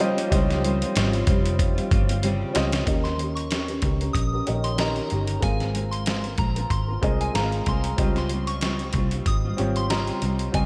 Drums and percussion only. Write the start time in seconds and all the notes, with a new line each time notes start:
0.00 closed hi-hat
0.18 closed hi-hat
0.32 kick, closed hi-hat
0.51 snare, closed hi-hat
0.64 closed hi-hat
0.82 closed hi-hat
0.96 snare, closed hi-hat
1.13 closed hi-hat
1.27 kick, closed hi-hat
1.46 closed hi-hat
1.59 kick, closed hi-hat
1.78 closed hi-hat
1.91 kick, closed hi-hat
2.09 closed hi-hat
2.23 closed hi-hat
2.55 snare, closed hi-hat
2.72 snare, closed hi-hat
2.87 kick, closed hi-hat
3.05 snare, closed hi-hat
3.19 closed hi-hat
3.37 closed hi-hat
3.51 snare, closed hi-hat
3.68 closed hi-hat
3.82 kick, closed hi-hat
4.01 closed hi-hat
4.15 kick, closed hi-hat
4.47 closed hi-hat
4.64 closed hi-hat
4.78 snare, closed hi-hat
4.96 closed hi-hat
5.10 closed hi-hat
5.27 closed hi-hat
5.42 kick, closed hi-hat
5.60 snare, closed hi-hat
5.75 closed hi-hat
5.93 closed hi-hat
6.06 snare, closed hi-hat
6.24 closed hi-hat
6.38 kick, closed hi-hat
6.56 closed hi-hat
6.70 kick, closed hi-hat
7.03 kick, closed hi-hat
7.21 closed hi-hat
7.35 snare, closed hi-hat
7.52 closed hi-hat
7.66 kick, closed hi-hat
7.84 closed hi-hat
7.98 kick, closed hi-hat
8.16 snare, closed hi-hat
8.29 closed hi-hat
8.47 closed hi-hat
8.61 snare, closed hi-hat
8.79 closed hi-hat
8.93 kick, closed hi-hat
9.11 closed hi-hat
9.26 kick, closed hi-hat
9.58 closed hi-hat
9.76 closed hi-hat
9.90 snare, closed hi-hat
10.07 closed hi-hat
10.22 closed hi-hat
10.39 closed hi-hat
10.54 kick, closed hi-hat